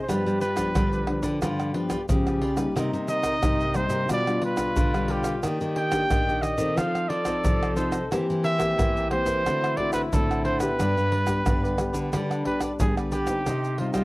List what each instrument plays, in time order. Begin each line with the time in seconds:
0.02 trumpet C5
0.08 nylon-string guitar G2 F3 G3 B3 D4, cavaquinho F4 G4 B4 D5, trombone G4, trumpet B4, pandeiro, tamborim, shaker, surdo
0.26 nylon-string guitar G3, pandeiro, shaker
0.41 cavaquinho F4 G4 B4 D5, trumpet B4, pandeiro, shaker
0.55 nylon-string guitar F3 B3 D4, cavaquinho F4 G4 B4 D5, pandeiro, tamborim, shaker, surdo
0.75 nylon-string guitar D3 G3, cavaquinho F4 G4 B4 D5, pandeiro, tamborim, shaker, surdo
0.93 cavaquinho G4 B4 D5, pandeiro, shaker
1.07 nylon-string guitar F3 B3 D4, pandeiro, tamborim
1.22 nylon-string guitar D3, cavaquinho G4 B4 D5, pandeiro, shaker, surdo
1.42 nylon-string guitar G2 D3, cavaquinho F4 G4 B4 D5, trombone F4, pandeiro, tamborim, shaker, surdo
1.60 pandeiro, tamborim, shaker
1.74 nylon-string guitar F3 B3 D4, cavaquinho F4 G4 B4 D5, trombone G4, pandeiro
1.90 cavaquinho F4 G4 B4 D5, pandeiro, tamborim, shaker, surdo
2.09 nylon-string guitar C#3 F3 B3, trombone G4, pandeiro, shaker, surdo
2.27 cavaquinho G4 B4 D5, pandeiro, tamborim, shaker, surdo
2.41 cavaquinho F4 G4 B4 D5, pandeiro
2.57 nylon-string guitar G3 A#3 D#4, cavaquinho G4 B4 D5, pandeiro, tamborim, shaker
2.76 nylon-string guitar C3, trombone D#4, cavaquinho D#4 A#4 C5 D#5, pandeiro, tamborim, shaker, surdo
2.93 nylon-string guitar C3, pandeiro, shaker
3.08 cavaquinho D#4 A#4 C5 D#5, trumpet D#5, pandeiro, shaker
3.24 cavaquinho D#4 A#4 C5 D#5, pandeiro, tamborim, shaker, surdo
3.42 nylon-string guitar G2 C3 G3 A#3 D#4, cavaquinho D#4 A#4 C5 D#5, pandeiro, tamborim, shaker, surdo
3.61 cavaquinho A#4 C5 D#5, pandeiro, shaker
3.74 nylon-string guitar G3 A#3 D#4, trumpet C5, pandeiro, tamborim, shaker
3.89 nylon-string guitar C3, cavaquinho A#4 C5 D#5, pandeiro, shaker, surdo
4.09 nylon-string guitar B2 G3 D4 F4, cavaquinho D4 G4 B4 F5, trombone F4, trumpet D5, pandeiro, tamborim, shaker, surdo
4.27 nylon-string guitar G3 D4 F4, pandeiro, tamborim, shaker
4.42 cavaquinho D4 G4 B4 F5, trumpet B4, pandeiro
4.57 cavaquinho D4 G4 B4 F5, pandeiro, tamborim, shaker, surdo
4.76 nylon-string guitar B2 D3, pandeiro, shaker, surdo
4.94 nylon-string guitar G3 D4 F4, cavaquinho G4 B4 F5, pandeiro, tamborim, shaker, surdo
5.08 cavaquinho D4 G4 B4 F5, trumpet G4, pandeiro
5.23 cavaquinho G4 B4 F5, pandeiro, tamborim, shaker
5.43 nylon-string guitar D#3 A#3 G4, cavaquinho G4 D5 D#5, trombone G4, pandeiro, tamborim, shaker, surdo
5.61 nylon-string guitar D#3, pandeiro, shaker
5.76 cavaquinho D4 G4 D5 D#5, trumpet G5, pandeiro
5.91 nylon-string guitar A#3 D4 G4, cavaquinho D4 G4 D5 D#5, pandeiro, tamborim, shaker, surdo
6.10 nylon-string guitar A#2 D#3, cavaquinho D4 G4 D5 D#5, pandeiro, tamborim, shaker, surdo
6.28 nylon-string guitar A#3 D4 G4, cavaquinho G4 D5 D#5, pandeiro, shaker
6.42 trumpet D#5, pandeiro, tamborim, shaker
6.58 nylon-string guitar D#3 C4 D#4 A4, cavaquinho G4 D5 D#5, pandeiro, shaker, surdo
6.77 nylon-string guitar F3, cavaquinho F4 A4 C5 D#5, trombone A4, trumpet F5, pandeiro, tamborim, shaker, surdo
6.95 pandeiro, tamborim, shaker
7.08 cavaquinho F4 A4 C5 D#5, trumpet D5, pandeiro
7.25 nylon-string guitar C4 D#4 A4, cavaquinho F4 A4 C5 D#5, pandeiro, tamborim, shaker, surdo
7.44 nylon-string guitar C3 F3, pandeiro, shaker, surdo
7.62 cavaquinho A4 C5 D#5, pandeiro, tamborim, shaker, surdo
7.76 nylon-string guitar C4 D#4 A4, cavaquinho F4 A4 C5 D#5, trumpet C5, pandeiro, shaker
7.91 cavaquinho A4 C5 D#5, pandeiro, tamborim, shaker
8.11 nylon-string guitar E3 A#3 C4 G4, cavaquinho E4 A#4 C5 E5, trombone G4, pandeiro, tamborim, shaker, surdo
8.30 nylon-string guitar E3, pandeiro, shaker
8.43 cavaquinho E4 A#4 C5 E5, trumpet E5, pandeiro
8.58 nylon-string guitar A#3 C4 G4, cavaquinho E4 A#4 C5 E5, pandeiro, tamborim, shaker, surdo
8.77 nylon-string guitar E3, cavaquinho E4 A#4 C5 E5, pandeiro, tamborim, shaker, surdo
8.96 cavaquinho A#4 C5 E5, pandeiro, shaker
9.11 nylon-string guitar A#3 C4 G4, trumpet C5, pandeiro, tamborim
9.26 nylon-string guitar E3, cavaquinho A#4 C5 E5, pandeiro, shaker, surdo
9.45 nylon-string guitar D3 A3 C4 F#4, cavaquinho D4 A4 C5 F#5, trombone E4, pandeiro, tamborim, shaker, surdo
9.64 pandeiro, tamborim, shaker
9.77 nylon-string guitar A3 C4 F#4, cavaquinho D4 A4 C5 F#5, trumpet D5, pandeiro, surdo
9.93 cavaquinho D4 A4 C5 F#5, trumpet B4, pandeiro, tamborim, shaker, surdo
10.12 nylon-string guitar A2 D3 A3 C4 F#4, trumpet A4, pandeiro, shaker, surdo
10.31 cavaquinho A4 C5 F#5, pandeiro, tamborim, shaker, surdo
10.44 cavaquinho D4 A4 C5 F#5, trumpet C5, pandeiro
10.59 nylon-string guitar B3 D4 G4, cavaquinho A4 C5 F#5, trumpet B4, pandeiro, tamborim, shaker
10.79 nylon-string guitar G2 G3, cavaquinho D4 G4 B4 D5, trombone D4, pandeiro, tamborim, shaker, surdo
10.97 nylon-string guitar G2, pandeiro, shaker
11.11 cavaquinho D4 G4 B4 D5, pandeiro
11.27 nylon-string guitar B3 D4 G4, cavaquinho D4 G4 B4 D5, pandeiro, tamborim, shaker, surdo
11.46 nylon-string guitar G2 D3, trombone B3, cavaquinho D4 G4 B4 D5, pandeiro, tamborim, shaker, surdo
11.63 cavaquinho G4 B4 D5, pandeiro, shaker
11.78 nylon-string guitar B3 D4 G4, pandeiro, tamborim, shaker
11.93 nylon-string guitar D3, cavaquinho G4 B4 D5, pandeiro, shaker, surdo
12.12 nylon-string guitar D3 G3, cavaquinho D4 G4 B4 D5, trombone D4, pandeiro, tamborim, shaker, surdo
12.31 pandeiro, tamborim, shaker
12.44 nylon-string guitar B3 D4 G4, cavaquinho D4 G4 B4 D5, trumpet B4, pandeiro, surdo
12.60 cavaquinho D4 G4 B4 D5, pandeiro, tamborim, shaker, surdo
12.80 nylon-string guitar D3 G3 B3 D4, trombone B3, trumpet G#4, pandeiro, shaker, surdo
12.97 cavaquinho G4 B4 D5, pandeiro, tamborim, shaker, surdo
13.12 cavaquinho D4 G4 B4 D5, trumpet G4, pandeiro, shaker
13.27 nylon-string guitar C4 D#4 G4, cavaquinho G4 B4 D5, pandeiro, tamborim, shaker
13.46 nylon-string guitar C3, cavaquinho D#4 G4 C5 D#5, pandeiro, tamborim, shaker, surdo
13.64 pandeiro, shaker
13.78 nylon-string guitar G3 C4 D#4, cavaquinho D#4 G4 C5 D#5, trumpet F4, pandeiro
13.93 nylon-string guitar G3, cavaquinho D#4 G4 C5 D#5, trumpet F4, pandeiro, tamborim, shaker, surdo